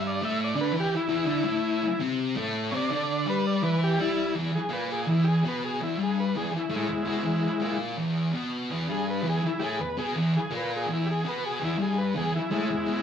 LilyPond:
<<
  \new Staff \with { instrumentName = "Transistor combo organ" } { \time 4/4 \key a \lydian \tempo 4 = 165 d''8 e''8 d''8 b'8 g'8 e'4.~ | e'4. r2 <cis'' d''>8~ | <cis'' d''>4 b'8 d''8 b'8 g'8 e'4 | r8 gis'8 b'8 gis'8 e'8 <g' gis'>8 b'8 gis'8 |
e'8 gis'8 b'8 gis'8 e'8 <gis e'>4.~ | <gis e'>4. r2 r8 | r8 gis'8 b'8 gis'8 e'8 <g' gis'>8 b'8 gis'8 | r8 gis'8 b'8 gis'8 e'8 <g' gis'>8 b'8 gis'8 |
e'8 gis'8 b'8 gis'8 e'8 <gis e'>4. | }
  \new Staff \with { instrumentName = "Distorted electric guitar" } { \clef bass \time 4/4 \key a \lydian <g, g>8 <a, a>4 <d d'>8 <e e'>8 r8 <e, e>8 <d d'>8 | <a, a>4 r8 <c c'>4 <a, a>4 <c c'>8 | <d d'>4 <g g'>4 <e e'>4 <g g'>4 | <e, e>8 r8 <ais, ais>4 <e, e>4 <b, b>4 |
<e, e>8 <g, g>4 <e, e>8 r8 <a, a>8 e,8 <b, b>8 | <e, e>8 r8 <ais, ais>4 <e, e>4 <b, b>4 | <e, e>8 <g, g>4 <e, e>8 r8 <a, a>8 e,8 <b, b>8 | <e, e>8 r8 <ais, ais>4 <e, e>4 <b, b>4 |
<e, e>8 <g, g>4 <e, e>8 r8 <a, a>8 e,8 <b, b>8 | }
>>